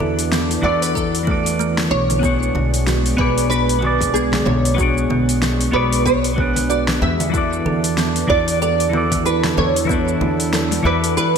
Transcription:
Already playing: E3 B3 D4 E4 F#4 A4 D5 E5
0.00 E2 A4, low conga
0.19 open hi-hat, shaker
0.32 B3, snare, shaker
0.51 open hi-hat, shaker
0.62 E2 E3 E4 F#4 A4 D5
0.82 B4, open hi-hat, shaker
0.95 A4, kick, shaker
1.15 open hi-hat, shaker
1.23 E3 A3 E4 F#4
1.28 A4 D5, kick
1.46 open hi-hat, shaker
1.59 A3, shaker
1.78 snare, shaker
1.91 B1 E4 C#5
2.10 open hi-hat, low conga, shaker
2.19 G#3 B3 F#4 G#4, kick
2.24 D4 C#5, shaker
2.43 shaker
2.55 B1 D4, low conga
2.74 open hi-hat, shaker
2.87 F#4, snare, shaker
3.06 open hi-hat, shaker
3.17 B1 B3 F#4 G#4 B4 C#5, kick
3.21 D5
3.38 open hi-hat, shaker
3.50 D4 B4, shaker
3.69 open hi-hat, shaker
3.79 B3 F#4 G#4
3.83 D5, low conga
4.01 kick, open hi-hat, low conga, shaker
4.14 B3 G#4, shaker
4.32 snare, low conga
4.34 low conga, shaker
4.46 B1 D4 C#5, low conga
4.65 open hi-hat, shaker
4.75 B3 F#4 G#4, kick
4.79 D4 C#5, shaker
4.98 shaker
5.10 B1 B3, low conga
5.29 open hi-hat, shaker
5.42 D4, snare, shaker
5.61 open hi-hat, shaker
5.72 B1 B3 F#4 G#4 B4 C#5 D5
5.93 open hi-hat, shaker
6.05 B3 C#5, kick, shaker
6.24 open hi-hat, shaker
6.34 B3 D4 F#4, kick, low conga
6.38 D4 G#4 B4
6.56 open hi-hat, low conga, shaker
6.70 F#4 D5, shaker
6.88 snare, low conga, shaker
7.02 E2 B3 E5
7.20 open hi-hat, low conga, shaker
7.30 E3 E4 F#4
7.34 E3 B3 D4 E4 A4 D5, kick, shaker
7.53 shaker
7.65 E2 A4, low conga
7.84 open hi-hat, shaker
7.98 B3, snare, shaker
8.16 open hi-hat, shaker
8.28 E2 E3 E4 F#4 A4 D5, kick
8.48 open hi-hat, shaker
8.62 A4 D5, shaker
8.80 open hi-hat, shaker
8.89 E3 B3 E4 F#4, low conga
8.95 A4 D5
9.12 kick, open hi-hat, low conga, shaker
9.26 E4 B4, shaker
9.44 snare, low conga, shaker
9.57 E2 A4 C#5, low conga
9.76 open hi-hat, shaker
9.85 E3 E4 F#4
9.89 B3 D4 A4, kick, shaker
10.08 shaker
10.21 E2 E4, low conga
10.40 open hi-hat, shaker
10.53 A4, snare, shaker
10.71 open hi-hat, high conga, shaker
10.83 E2 E3 B3 E4 F#4 A4 B4 D5
11.04 open hi-hat, shaker
11.17 E4 B4, shaker

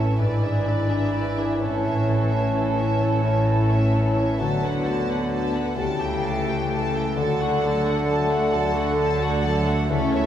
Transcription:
Already playing: A2 E3 C#4 E4 A4 C#5 E5 A5
0.17 G#1 G#2 D4 E4 B4 D5 B5
0.42 D4 G#4 E5
0.65 D4 E4 B4 D5
0.90 D4 G#4 E5
1.13 E4 B4 D5
1.37 D4 G#4 E5
1.60 A1 A2 C#4 E4 A4 C#5 A5
1.84 C#4 C#5 E5
2.07 E3 E4 A4 C#5
2.30 C#4 C#5 E5
2.55 C#4 E4 A4 C#5
2.77 C#4 C#5 E5
3.00 A1 A2 E4 A4 C#5
3.24 C#4 C#5 E5
3.48 E4 A4 C#5
3.71 C#4 C#5 E5
3.94 C#4 E4 A4 C#5
4.17 C#4 C#5 E5
4.39 D2 D3 F#3 A3 B3 F#4 A4 B4 A5
4.62 B3 B4 F#5
4.84 A3 B3 A4 A5
5.08 B3 B4 F#5
5.30 A3 F#4 A4 A5
5.53 B3 B4 F#5
5.76 C#2 C#3 E3 G3 A3 G4 A4 G5 A5
5.99 A3 G4 G5
6.22 G3 A3 A4 A5
6.46 A3 G4 G5
6.69 G3 G4 A4 A5
6.93 A3 G4 G5
7.16 D2 D3 F#3 F#4 A4 F#5 A5
7.38 A3 F#4 F#5
7.61 F#3 D4 A4 A5
7.84 A3 F#4 F#5
8.06 F#3 A3 A4 A5
8.30 A3 F#4 F#5
8.51 D2 D3 F#3 A4 A5
8.76 A3 F#4 F#5
8.98 F#3 F#4 A4 A5
9.21 A3 F#4 F#5
9.44 F#3 A3 A4 A5
9.67 A3 F#4 F#5
9.89 C#2 C#3 E3 A3 C#4 E4 A4 C#5 E5
10.12 A3 C#5 E5

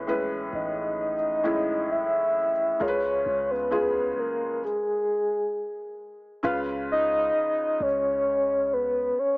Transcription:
Already playing: A1 A2 G#3 C#4 B4
0.07 A2 G#3 C#4 B4
0.53 A1 D#5
1.43 A2 G#3 C#4 E4
1.91 E5
2.80 C#2 C#3 G#3 F4 A#4 C#5
2.88 B4
3.26 C#2
3.51 B4
3.71 C#3 G#3 F4 G#4
4.19 A#4
4.64 G#4
6.43 C#2 C#3 C#4 F4 B4 F5
6.92 D#5
7.80 C#2 C#5
8.73 B4
9.19 C#5

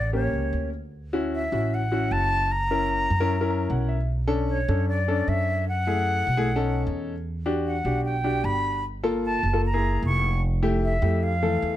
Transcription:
Already playing: A1 D5
0.13 A#3 C#4 G4 C#5
0.33 C#2
0.53 D2
1.13 C#4 E4 F#4
1.35 E5
1.52 A1 C#4 E4 F#4
1.74 F#5
1.92 C#4 E4 F#4
2.11 F#1 A5
2.52 A#5
2.71 C#4 E4 A#4
3.10 F#2
3.20 C#4 E4 A#4
3.41 C#4 E4 A#4
3.50 A#5
3.70 B1 F#5
3.89 E5
4.27 C#4 D4 A4
4.49 C#5
4.68 F#2 C#4 D4 A4
4.89 D5
5.08 C#4 D4 A4
5.27 F#2 E5
5.68 F#5
5.87 A3 E4 G#4
6.27 B1
6.37 A3 E4 G#4
6.56 C#4 D#4 A4
6.87 E2
7.46 D4 F#4 G4
7.67 F#5
7.85 B1 D4 F#4 G4
8.05 G5
8.24 D4 F#4 G4
8.44 G1 B5
9.04 A#3 F4 A4
9.25 A5
9.43 F#1
9.53 A#3 F4 A4
9.66 A#5
9.74 A#3 E4 G#4
10.03 F1 C#6
10.63 A3 E4 G4
10.84 E5
11.02 F2 A3 E4 G4
11.23 F5
11.43 E3 A3 A4
11.62 E2

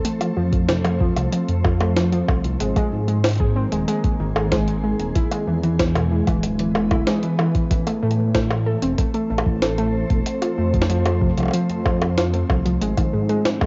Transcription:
Already playing: A3 C4 A4 C5
0.05 F3 A3, closed hi-hat
0.21 F3, closed hi-hat, high bongo
0.37 F2 F3
0.53 F3, kick, closed hi-hat
0.69 C3, snare, closed hi-hat
0.85 F3, closed hi-hat, high bongo
1.01 F3, kick
1.17 C2, closed hi-hat, high bongo
1.33 F3, closed hi-hat
1.48 F2, closed hi-hat
1.64 F4, kick, high bongo
1.80 A3, high bongo
1.96 F3, snare, closed hi-hat
2.12 F3, closed hi-hat
2.28 C2 F3, kick, high bongo
2.44 C2 C3, closed hi-hat
2.60 G#1 D#3 G#3, closed hi-hat
2.76 G#3 A#3, kick, closed hi-hat, high bongo
2.92 G#2
3.08 G#3, closed hi-hat
3.24 snare, closed hi-hat
3.26 closed hi-hat
3.29 closed hi-hat
3.31 closed hi-hat
3.33 closed hi-hat
3.35 closed hi-hat
3.38 G#4, kick, closed hi-hat
3.56 C4 G#4
3.72 D#1 G#3, closed hi-hat
3.88 G#3, closed hi-hat
4.04 G#3, kick, closed hi-hat
4.20 G#1 D#3
4.36 G#1 G#3, high bongo
4.52 G#3, kick, snare, closed hi-hat
4.68 closed hi-hat
4.84 G#3
4.99 D#1, closed hi-hat
5.15 E3 E4, kick, closed hi-hat
5.28 G#3, closed hi-hat, high bongo
5.47 E2 E3
5.63 E3, closed hi-hat
5.79 E3, kick, snare, closed hi-hat
5.95 B2, closed hi-hat, high bongo
6.11 E3
6.23 D1 E3 B3, kick, closed hi-hat, high bongo
6.30 B4
6.43 closed hi-hat
6.59 E3, closed hi-hat
6.75 E1, high bongo
6.91 D1 E4, kick, high bongo
7.07 G#3, snare, closed hi-hat
7.23 E3, closed hi-hat
7.39 E3, high bongo
7.55 E3, kick, closed hi-hat
7.71 A1 E3, kick, closed hi-hat
7.87 A3, closed hi-hat, high bongo
8.03 A2 A3
8.11 closed hi-hat
8.35 A3, kick, snare, closed hi-hat
8.51 high bongo
8.65 C4 A4
8.81 E1 C4 C5, closed hi-hat
8.86 A4
8.98 A3, kick, closed hi-hat
9.14 A3, closed hi-hat
9.30 A1 A3
9.38 high bongo
9.46 A1 E3, kick
9.62 A3, snare, closed hi-hat
9.78 A3, closed hi-hat
10.10 E1 A3, kick, closed hi-hat
10.26 F3, closed hi-hat
10.42 F4, closed hi-hat, high bongo
10.58 F2 A3
10.74 F3, kick, closed hi-hat
10.82 snare
10.90 F3, closed hi-hat
11.06 F3, closed hi-hat, high bongo
11.22 C3, kick
11.38 C2 F3, closed hi-hat, high bongo
11.40 high bongo
11.43 high bongo
11.46 high bongo
11.48 high bongo
11.51 F3, closed hi-hat, high bongo
11.70 F2, closed hi-hat
11.86 F3, kick, high bongo
12.02 high bongo
12.18 F4, snare, closed hi-hat
12.33 A3, closed hi-hat
12.49 C2 F3, kick, high bongo
12.65 C2 F3, closed hi-hat
12.81 G#1 D#3 G#3, closed hi-hat
12.97 D#3, kick, closed hi-hat, high bongo
13.13 G#2 G#3
13.29 G#3 A#3, closed hi-hat
13.45 snare, closed hi-hat
13.61 G#3, kick, high bongo

